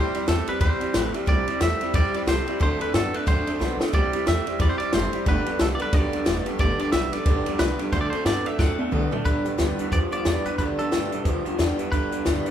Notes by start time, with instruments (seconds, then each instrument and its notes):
Already playing: clean electric guitar C3 G3 C5, steel-string acoustic guitar C3 G3 C4 E4 G4
0.14 clean electric guitar C3 G3, steel-string acoustic guitar C4 E4 G4, muted upright bass stroke, ride
0.26 upright bass E2, clean electric guitar C3 A3 A4, steel-string acoustic guitar G3 C4 E4 G4, snare, ride
0.46 clean electric guitar C3 G3 B4, steel-string acoustic guitar C4 E4 G4, muted upright bass stroke, ride
0.60 upright bass E2, steel-string acoustic guitar C3 G3 C4 E4 G4, clean electric guitar C3 G3 C5, kick, ride
0.80 clean electric guitar C3 G3, steel-string acoustic guitar C4 E4 G4, muted upright bass stroke, ride
0.93 upright bass A1, clean electric guitar C3 A3, steel-string acoustic guitar G3 C4 E4 G4, snare, ride
0.98 clean electric guitar B4
1.13 clean electric guitar C3 G3, steel-string acoustic guitar C4 E4 G4, ride
1.26 upright bass C2, steel-string acoustic guitar C3 G3 C4 E4 G4, clean electric guitar C3 G3 D5, kick, ride
1.46 clean electric guitar C3 G3, steel-string acoustic guitar C4 E4 G4, muted upright bass stroke, ride
1.60 upright bass E2, clean electric guitar C3 A3 E5, steel-string acoustic guitar G3 C4 E4 G4, snare, ride
1.81 clean electric guitar C3 G3, steel-string acoustic guitar C4 E4 G4, muted upright bass stroke, ride
1.93 upright bass E2, steel-string acoustic guitar C3 G3 C4 E4 G4, clean electric guitar C3 G3 D5, kick, ride
2.14 clean electric guitar C3 G3 D5, steel-string acoustic guitar C4 E4 G4, muted upright bass stroke, ride
2.26 upright bass C2, clean electric guitar C3 A3 C5, steel-string acoustic guitar G3 C4 E4 G4, snare, ride
2.46 clean electric guitar C3 G3, steel-string acoustic guitar C4 E4 G4, muted upright bass stroke, ride
2.59 upright bass D2, steel-string acoustic guitar D3 F#3 C4 D4 A4, clean electric guitar D3 A3 C5, kick, ride
2.79 clean electric guitar D3 A3 B4, steel-string acoustic guitar C4 D4 A4, muted upright bass stroke, ride
2.93 upright bass G2, clean electric guitar D3 B3 A4, steel-string acoustic guitar F#3 C4 D4 A4, snare, ride
3.13 clean electric guitar D3 A3 B4, steel-string acoustic guitar C4 D4 A4, ride
3.26 upright bass F#2, steel-string acoustic guitar D3 F#3 C4 D4 A4, clean electric guitar D3 A3 C5, kick, ride
3.46 clean electric guitar D3 A3, steel-string acoustic guitar C4 D4 A4, muted upright bass stroke, ride
3.59 upright bass B1, clean electric guitar D3 B3, steel-string acoustic guitar F#3 C4 D4 A4, snare
3.79 clean electric guitar D3 A3, steel-string acoustic guitar C4 D4 A4, muted upright bass stroke, snare
3.93 upright bass C2, steel-string acoustic guitar C3 G3 C4 E4 G4, clean electric guitar C3 G3 D5, kick, ride
4.13 clean electric guitar C3 G3, steel-string acoustic guitar C4 E4 G4, muted upright bass stroke, ride
4.26 upright bass E2, clean electric guitar C3 A3 E5, steel-string acoustic guitar G3 C4 E4 G4, snare, ride
4.46 clean electric guitar C3 G3, steel-string acoustic guitar C4 E4 G4, muted upright bass stroke, ride
4.59 upright bass E2, steel-string acoustic guitar C3 G3 C4 E4 G4, clean electric guitar C3 G3 D5, kick, ride
4.70 clean electric guitar C5
4.78 clean electric guitar C3 G3 D5, steel-string acoustic guitar C4 E4 G4, muted upright bass stroke, ride
4.93 upright bass F#1, clean electric guitar C3 A3 C5, steel-string acoustic guitar G3 C4 E4 G4, snare, ride
5.13 clean electric guitar C3 G3, steel-string acoustic guitar C4 E4 G4, muted upright bass stroke, ride
5.26 upright bass G1, steel-string acoustic guitar G2 D3 G3 B3 D4 G4, clean electric guitar G2 D3 B4, kick, ride
5.46 clean electric guitar G2 D3, steel-string acoustic guitar G3 B3 D4 G4, ride
5.59 upright bass C2, clean electric guitar G2 E3 A4, steel-string acoustic guitar G3 B3 D4 G4, snare, ride
5.75 steel-string acoustic guitar G4, clean electric guitar D5
5.79 clean electric guitar G2 D3 B4, steel-string acoustic guitar G3 B3 D4, ride
5.92 upright bass B1, steel-string acoustic guitar G2 D3 G3 B3 D4 G4, clean electric guitar G2 D3 D5, kick, ride
6.12 clean electric guitar G2 D3, steel-string acoustic guitar G3 B3 D4 G4, muted upright bass stroke, ride
6.25 upright bass E1, clean electric guitar G2 E3, steel-string acoustic guitar G3 B3 D4 G4, snare, ride
6.46 clean electric guitar G2 D3, steel-string acoustic guitar G3 B3 D4 G4, muted upright bass stroke, ride
6.58 upright bass G1, steel-string acoustic guitar G2 D3 G3 B3 D4 G4, clean electric guitar G2 D3 D5, kick, ride
6.79 clean electric guitar G2 D3 D5, steel-string acoustic guitar G3 B3 D4 G4, muted upright bass stroke, ride
6.92 upright bass B1, clean electric guitar G2 E3 E5, steel-string acoustic guitar G3 B3 D4 G4, snare, ride
7.13 clean electric guitar G2 D3 D5, steel-string acoustic guitar G3 B3 D4 G4, muted upright bass stroke, ride
7.25 upright bass B1, steel-string acoustic guitar G2 D3 G3 B3 D4 G4, clean electric guitar G2 D3, kick, ride
7.46 clean electric guitar G2 D3, steel-string acoustic guitar G3 B3 D4 G4, muted upright bass stroke, ride
7.59 upright bass C2, clean electric guitar G2 E3 B4, steel-string acoustic guitar G3 B3 D4 G4, snare, ride
7.79 clean electric guitar G2 D3, steel-string acoustic guitar G3 B3 D4 G4, muted upright bass stroke, ride
7.92 upright bass D2, clean electric guitar D3 A3 C5, steel-string acoustic guitar D3 F#3 C4 D4 A4, kick, ride
8.01 clean electric guitar D5
8.10 clean electric guitar D3 A3 C5, steel-string acoustic guitar D4 A4, muted upright bass stroke, ride
8.15 steel-string acoustic guitar C4
8.25 upright bass G2, clean electric guitar D3 B3 D5, steel-string acoustic guitar F#3 C4 D4 A4, snare, ride
8.45 clean electric guitar D3 A3 E5, steel-string acoustic guitar C4 D4 A4, muted upright bass stroke, ride
8.58 upright bass F#2, steel-string acoustic guitar D3 F#3 C4 D4 A4, clean electric guitar D3 A3 F#5, kick, snare
8.78 clean electric guitar D3 A3, steel-string acoustic guitar C4 D4 A4, muted upright bass stroke, high tom
8.91 upright bass C2, clean electric guitar D3 B3, steel-string acoustic guitar F#3 C4 D4 A4, mid tom
9.11 clean electric guitar D3 A3, steel-string acoustic guitar C4 D4 A4, floor tom
9.25 upright bass G1, steel-string acoustic guitar G2 D3 G3 B3 D4 G4, clean electric guitar G2 D3 B4, kick, closed hi-hat
9.45 upright bass C2, clean electric guitar G2 D3, steel-string acoustic guitar G3 B3 D4 G4, closed hi-hat
9.58 upright bass D2, steel-string acoustic guitar G2 D3 G3 B3 D4 G4, clean electric guitar G2 E3, snare, closed hi-hat
9.78 clean electric guitar G2 E3, steel-string acoustic guitar G3 B3 D4 G4, muted upright bass stroke, closed hi-hat
9.91 upright bass E2, clean electric guitar G2 F3 D5, steel-string acoustic guitar G3 B3 D4 G4, kick, closed hi-hat
10.11 clean electric guitar G2 F3 D5, steel-string acoustic guitar G3 B3 D4 G4, muted upright bass stroke, closed hi-hat
10.25 upright bass E2, steel-string acoustic guitar G2 D3 G3 B3 D4 G4, clean electric guitar G2 E3, snare, closed hi-hat
10.45 clean electric guitar G2 E3 B4, steel-string acoustic guitar G3 B3 D4 G4, muted upright bass stroke, closed hi-hat
10.58 upright bass D2, steel-string acoustic guitar G2 D3 G3 B3 D4 G4, clean electric guitar G2 D3 B4, kick, closed hi-hat
10.78 clean electric guitar G2 D3 A4, steel-string acoustic guitar G3 B3 D4 G4, muted upright bass stroke, closed hi-hat
10.91 upright bass D2, steel-string acoustic guitar G2 D3 G3 B3 D4 G4, clean electric guitar G2 E3, snare, closed hi-hat
11.11 upright bass B1, clean electric guitar G2 E3, steel-string acoustic guitar G3 B3 D4 G4, closed hi-hat
11.24 upright bass D2, clean electric guitar G2 F3, steel-string acoustic guitar G3 B3 D4 G4, kick, closed hi-hat
11.45 clean electric guitar G2 F3, steel-string acoustic guitar G3 B3 D4 G4, muted upright bass stroke, closed hi-hat
11.58 upright bass E2, clean electric guitar G2 E3, steel-string acoustic guitar G2 D3 G3 B3 D4 G4, snare, closed hi-hat
11.78 clean electric guitar G2 E3, steel-string acoustic guitar G3 B3 D4 G4, muted upright bass stroke, closed hi-hat
11.92 upright bass G1, clean electric guitar G2 D3 B4, steel-string acoustic guitar G2 D3 G3 B3 D4 G4, kick, closed hi-hat
12.11 upright bass C2, clean electric guitar G2 D3, steel-string acoustic guitar G3 B3 D4 G4, closed hi-hat
12.25 upright bass D2, steel-string acoustic guitar G2 D3 G3 B3 D4 G4, clean electric guitar G2 E3, snare, closed hi-hat
12.45 clean electric guitar G2 E3, steel-string acoustic guitar G3 B3 D4 G4, muted upright bass stroke, closed hi-hat